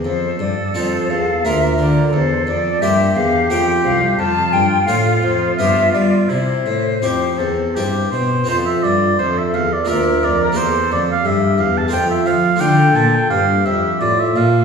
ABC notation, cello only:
X:1
M:3/4
L:1/8
Q:1/4=86
K:F
V:1 name="Cello" clef=bass
F,, G,, F,, E,, D,, D, | E,, F,, G,, E,, F,, C,, | [K:C] F,, G,, A,, F,, G,, G, | C, A,, F,, E,, G,, B,, |
[K:F] F,, G,, F,, E,, D,, F,, | E,, F,, G,, E,, F,, F, | D, B,, G,, F,, A,, B,, |]